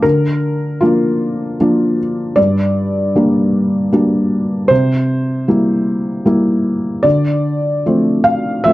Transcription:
felt piano
0.02 D3 A#4
0.81 F3 A#3 D4 F4
1.60 F3 A#3 D4
2.36 G2 D5
3.16 G3 A#3 D4
3.92 G3 A#3 D4
4.68 C3 C5
5.48 G3 A#3 E4
6.26 G3 A#3 E4
7.03 D3 D5
7.86 F3 A3 C4
8.24 F5
8.64 F3 A3 C4 E5

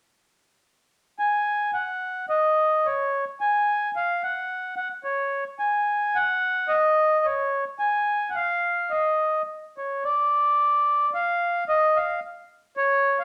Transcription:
accordion
1.19 G#5
1.74 F#5
2.29 D#5
2.86 C#5
3.40 G#5
3.96 F5
4.23 F#5
4.76 F#5
5.04 C#5
5.59 G#5
6.15 F#5
6.68 D#5
7.25 C#5
7.79 G#5
8.30 F#5
8.35 F5
8.90 D#5
9.78 C#5
10.05 D5
11.14 F5
11.69 D#5
11.96 F5
12.77 C#5
13.19 F5

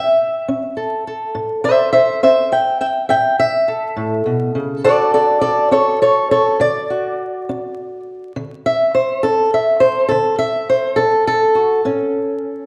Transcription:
steel-string acoustic guitar
Already playing: A2 E5
0.48 C#4
0.77 A4
1.07 A4
1.35 A2
1.64 C5 E5
1.93 C5 E5
2.23 C#4 C5 E5
2.52 E5 G5
2.81 E5 G5
3.09 A2 E5 G5
3.39 E5
3.68 A4
3.96 A2
4.26 B2
4.55 C#3
4.84 D3 D4 F#4 A4 D5
5.14 A4 D5
5.41 A4 D5
5.71 D4 A4 C#5
6.02 A4 C#5
6.31 A4 C#5
6.60 D3 D5
6.90 F#4
7.49 D4
8.36 D3
8.66 E5
8.95 C5
9.23 D4 A4
9.54 E5
9.80 C5
10.08 D3 A4
10.39 E5
10.69 C5
10.96 D4 A4
11.27 A4
11.55 F#4
11.85 A2 C#4

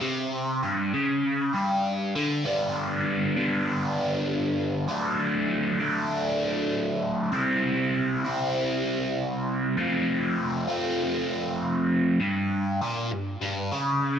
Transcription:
overdriven electric guitar
0.01 C3
0.63 G2
0.93 C#3
1.53 G2
2.15 D3
2.44 G2 D3 G3 B3 D4
3.36 G2 D3 G3 B3 D4
4.88 D3 F#3 A3 D4
5.80 D3 F#3 A3 D4
7.32 C3 G3 C4 E4
8.24 C3 G3 C4 E4
9.77 F3 A3 C4 F4
10.67 F3 A3 C4 F4
12.20 G2
12.81 A#2
13.11 G2
13.41 G2
13.71 C#3

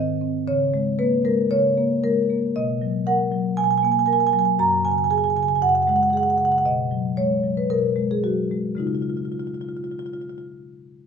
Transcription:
marimba
Already playing: G#2 D#3 C4 D#5
0.21 C4
0.47 C#3 C#5
0.74 G#3
0.99 A#3 B4
1.25 G#3 A#4
1.50 C#3 C#5
1.77 A#3
2.03 G#3 A#4
2.30 A#3
2.56 B2 D#5
2.82 F#3
3.07 A#4 F#5
3.32 F#3
3.57 B2 G#5
3.64 G#5
3.71 G#5
3.78 G#5
3.83 A#3 G#5
3.92 G#5
3.99 G#5
4.06 A#4 G#5
4.13 G#5
4.20 G#5
4.27 G#5
4.33 F#3 G#5
4.39 G#5
4.45 G#5
4.59 F#2 A#5
4.85 C#3 G#5
4.92 G#5
4.98 G#5
5.04 G#5
5.10 G#4 G#5
5.18 G#5
5.24 G#5
5.30 G#5
5.36 C#3 G#5
5.43 G#5
5.48 G#5
5.55 G#5
5.62 F#2 F#5
5.69 F#5
5.75 F#5
5.82 F#5
5.87 G#3 F#5
5.96 F#5
6.03 F#5
6.10 G#4 F#5
6.17 F#5
6.23 F#5
6.30 F#5
6.38 C#3 F#5
6.45 F#5
6.52 F#5
6.58 F#5
6.65 B2 D#5
6.91 F#3
7.17 G#3 C#5
7.43 F#3
7.57 B4
7.70 B2 A#4
7.96 G#3
8.11 G#4
8.24 F#3 F#4
8.51 G#3
8.75 C#3 G#3 D#4
8.80 F4
8.87 F4
8.95 F4
9.02 F4
9.09 F4
9.17 F4
9.25 F4
9.32 F4
9.39 F4
9.47 F4
9.54 F4
9.61 F4
9.69 F4
9.77 F4
9.84 F4
9.92 F4
9.99 F4
10.06 F4
10.13 F4
10.21 F4
10.29 F4
10.38 F4

